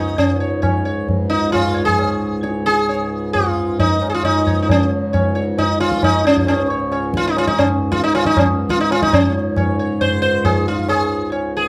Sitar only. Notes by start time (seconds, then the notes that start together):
Already playing: D#4 C#5
0.18 C#4
0.40 C#5
0.62 C#5
0.85 C#5
1.30 D#4
1.52 F4
1.74 C#5
1.85 G#4
2.43 C#5
2.66 G#4
2.89 C#5
3.33 F4
3.80 D#4
4.10 G#4
4.14 F4
4.25 D#4
4.46 C#5
4.62 D#4
4.71 C#4
5.13 C#5
5.35 C#5
5.58 D#4
5.80 F4
6.04 D#4
6.27 C#4
6.48 C#4
6.70 C#5
6.92 C#5
7.17 F4
7.27 D#4
7.38 F4
7.47 D#4
7.58 C#4
7.92 F4
8.04 D#4
8.15 F4
8.26 D#4
8.39 C#4
8.70 F4
8.81 D#4
8.92 F4
9.03 D#4
9.13 C#4 C#5
9.57 C#5
9.79 C#5
10.01 C5
10.22 C5
10.45 G#4
10.68 F4
10.89 G#4
11.32 C#5
11.57 G#4